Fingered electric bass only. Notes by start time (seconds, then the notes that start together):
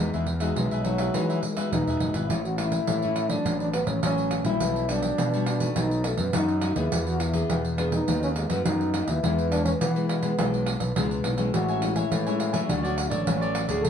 0.00 E2
0.14 E2
0.56 B1
0.71 B1
1.14 E3
1.72 D#1
1.87 E1
2.00 F#1
2.14 G#1
2.29 A1
2.87 A2
3.45 A1
3.87 A1
4.03 A1
4.45 A#1
4.61 B1
5.18 B2
5.76 B1
6.19 F#2
6.34 F#2
6.76 D#2
6.92 E2
7.50 E2
8.08 D#2
8.50 F#2
8.65 F#2
9.07 D#2
9.23 E2
9.81 E3
10.39 B1
10.81 B1
10.97 C#2
11.25 B1
11.54 A1
12.11 A2
12.69 D2
13.11 A1
13.27 A1
13.69 D2
13.85 C#2